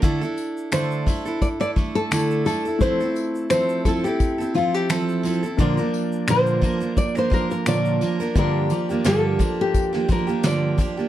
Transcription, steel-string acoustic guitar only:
X:1
M:4/4
L:1/16
Q:"Swing 16ths" 1/4=86
K:Gdor
V:1 name="Steel-string acoustic guitar"
[D,A,DEA] [DEA]3 [D,A,DEA]2 [A,DEA] [DEA]2 [DEA] [A,DEA]2 [D,A,DEA]2 [A,DEA] [DEA] | [F,CEA] [CEA]3 [F,CEA]2 [F,CEA] [CEA]2 [CEA] [F,CEA]2 [F,CEA]2 [F,CEA] [CEA] | [B,,D,F,B,DB] [F,B,DB]3 [B,,D,F,B,DB]2 [F,B,DB] [F,B,DB]2 [F,B,DB] [F,B,DB]2 [B,,D,F,B,DB]2 [F,B,DB] [F,B,DB] | [G,,D,F,B,DG]2 [F,B,DG] [F,B,DG] [G,,D,F,B,DG]2 [F,B,DG]3 [F,B,DG] [F,B,DG] [F,B,DG] [G,,D,F,B,DG]2 [F,B,DG] [F,B,DG] |]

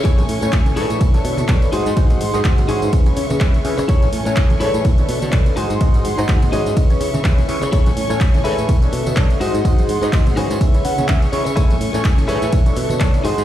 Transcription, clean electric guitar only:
X:1
M:4/4
L:1/8
Q:"Swing 16ths" 1/4=125
K:A
V:1 name="Clean electric guitar"
[EGAc] z2 [EGAc] z3 [^DFG^B]- | [^DFG^B] z2 [DFGB] z4 | [EGAc] z2 [EGAc] z3 [^DFG^B]- | [^DFG^B] z2 [DFG^d] z4 |
[EGAc] z2 [EGAB] z3 [^DFG^B]- | [^DFG^B] z2 [DFGBg] e f e c | [EGAc] z2 [EGAB] z3 [^DFG^B] |]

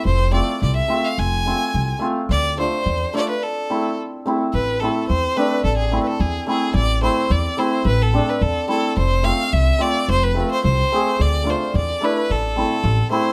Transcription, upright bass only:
X:1
M:2/4
L:1/8
Q:1/4=108
K:Am
V:1 name="Upright bass" clef=bass
F,,,2 C,, z | F,,,2 C,, z | D,,2 E,, z | z4 |
A,,,2 E,, z | A,,,2 E,, z | A,,,2 E,, z | A,,,2 E,, z |
F,,,2 C,, z | F,,,2 C,, z | D,,2 E,, z | A,,,2 A,,, z |]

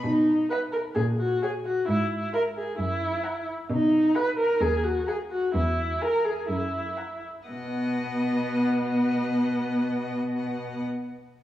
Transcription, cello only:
X:1
M:4/4
L:1/8
Q:1/4=128
K:B
V:1 name="Cello" clef=bass
B,,2 z2 A,,2 z2 | G,,2 z2 F,,2 z2 | B,,2 z2 D,,2 z2 | E,,2 z2 F,,2 z2 |
B,,8- | B,,8 |]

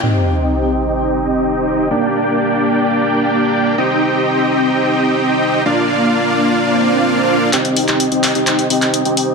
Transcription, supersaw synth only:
X:1
M:4/4
L:1/16
Q:1/4=128
K:Cm
V:1 name="Supersaw synth"
[CEGeg]16 | [B,DGdg]16 | [CEGeg]16 | [B,DFdf]16 |
[CEGeg]3 [CEGeg]2 [CEGeg]2 [CEGeg]3 [CEGeg]3 [CEGeg]3 |]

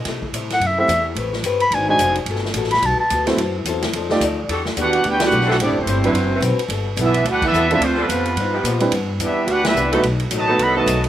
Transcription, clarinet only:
X:1
M:4/4
L:1/8
Q:"Swing" 1/4=217
K:Em
V:1 name="Clarinet"
z3 f e e2 z | z3 b ^g g2 z | z3 b a a2 z | z8 |
z8 | z8 | z8 | z8 |
z8 | z8 |]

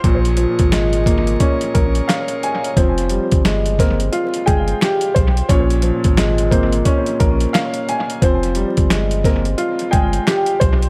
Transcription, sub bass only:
X:1
M:4/4
L:1/16
Q:"Swing 16ths" 1/4=88
K:Fm
V:1 name="Sub bass" clef=bass
B,,,3 A,,,4- A,,, z2 B,,,2 z4 | F,,,3 G,,,4- G,,, z2 G,,,2 z2 =B,,,2 | B,,,3 A,,,4- A,,, z2 B,,,2 z4 | F,,,3 G,,,4- G,,, z2 G,,,2 z2 =B,,,2 |]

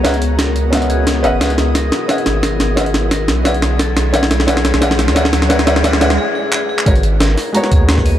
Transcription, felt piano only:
X:1
M:4/4
L:1/8
Q:"Swing 16ths" 1/4=176
K:B
V:1 name="Felt piano"
[CBdef] z3 [B,Cdef]3 [CBdef] | [CBdef] z3 [CBdef] z3 | [CBdef] z3 [CB=def] z3 | [CB=def] z [CBdef] z [CBdef] z [CBdef] z |
[CB=def] [CBdef] [CBdef] [CBdef] z4 | [G,FABc] z3 [G,B,Fca]4 |]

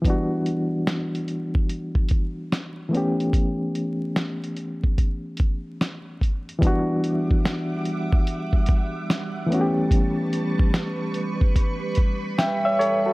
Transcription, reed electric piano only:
X:1
M:4/4
L:1/16
Q:"Swing 16ths" 1/4=73
K:Edor
V:1 name="Reed electric piano"
z16 | z16 | z16 | z12 [eg] [ce] [Ac] [FA] |]
V:2 name="Reed electric piano"
[E,F,G,B,DF]12- [E,F,G,B,DF]2 [E,A,B,CG]2- | [E,A,B,CG]12- [E,A,B,CG]2 z2 | [E,G,B,DF]12- [E,G,B,DF]2 [E,A,B,CFG]2- | [E,A,B,CFG]12- [E,A,B,CFG]2 z2 |]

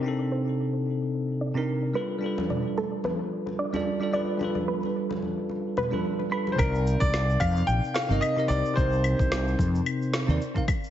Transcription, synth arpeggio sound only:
X:1
M:4/4
L:1/8
Q:"Swing 16ths" 1/4=110
K:Cdor
V:1 name="Synth arpeggio sound"
z c z3 d z =B | z d A =B z d z d | z =B z3 B z =b | z8 |
z8 |]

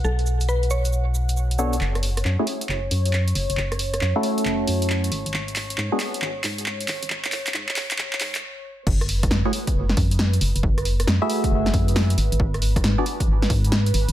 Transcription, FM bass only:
X:1
M:4/4
L:1/16
Q:"Swing 16ths" 1/4=136
K:F#m
V:1 name="FM bass" clef=bass
B,,,16 | F,,,4 F,, z3 F,,,2 F,,4 F,,, F,,, | F,,,4 F,, z3 F,,,2 F,,4 G,,, G,,, | G,,,4 G,, z3 G,,,2 G,,4 G,,, G,,, |
G,,,4 G,, z3 G,,,2 G,,2 z4 | F,,,4 F,, z3 F,,,2 F,,4 F,,, F,,, | F,,,4 F,, z3 F,,,2 F,,4 G,,, G,,, | G,,,4 G,, z3 G,,,2 G,,4 G,,, G,,, |]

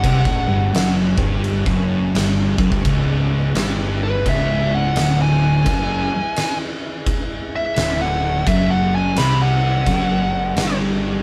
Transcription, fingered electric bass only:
X:1
M:4/4
L:1/16
Q:"Swing" 1/4=86
K:C#m
V:1 name="Fingered electric bass" clef=bass
^B,,, A,,, =G,,,2 F,,,2 G,,,3 F,,,3 G,,,2 F,,, G,,, | C,,,4 =G,,,4 C,,,4 =D,,,4 | F,,,2 z8 z2 =D,,,4 | F,,,4 ^B,,,4 F,,,4 =G,,,4 |]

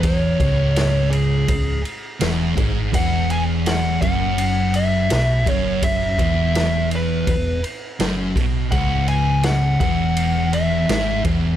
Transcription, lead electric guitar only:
X:1
M:4/4
L:1/8
Q:1/4=83
K:C#m
V:1 name="Lead electric guitar"
c3 G2 z3 | f g f f2 e2 c | e3 B2 z3 | f g f f2 e2 z |]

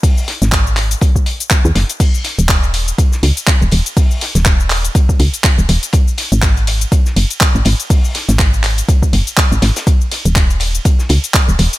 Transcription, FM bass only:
X:1
M:4/4
L:1/16
Q:"Swing 16ths" 1/4=122
K:Abdor
V:1 name="FM bass" clef=bass
z3 A,,,4 z6 E,, G,,, z | z3 E,,,4 z3 D,, z2 E,,, E,,, z | z3 E,,,4 z3 D,, z2 E,,, E,,, z | z3 A,,,4 z3 G,,, z2 A,,, A,,, z |
z3 A,,,4 z3 G,,, z2 A,,, A,,, z | z3 E,,,4 z3 D,, z2 E,,, E,,, z |]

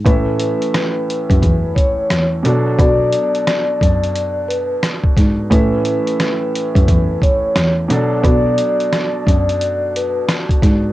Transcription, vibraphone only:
X:1
M:4/4
L:1/16
Q:"Swing 16ths" 1/4=88
K:A
V:1 name="Vibraphone"
B8- B2 c3 z3 | d8- d2 B2 z4 | B8- B2 c3 z3 | d8- d2 B2 z4 |]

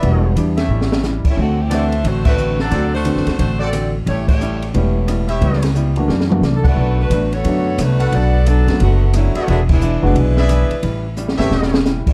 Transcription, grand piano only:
X:1
M:4/4
L:1/8
Q:"Swing" 1/4=178
K:Amix
V:1 name="Grand piano"
[E,G,B,DF]2 [E,G,B,DG] z4 z | z2 [E,A,=CDF] z4 z | z2 [E,A,=CDF] z4 z | z4 [E,A,B,CG]3 z |
[E,G,B,CG] z2 [E,A,_B,DF] z [E,A,^A,DF] z2 | z4 [D,A,B,CF]3 z | z3 [D,A,B,CF] z4 | z3 [E,^G,B,DF] z4 |
z3 [E,A,B,CG] z4 |]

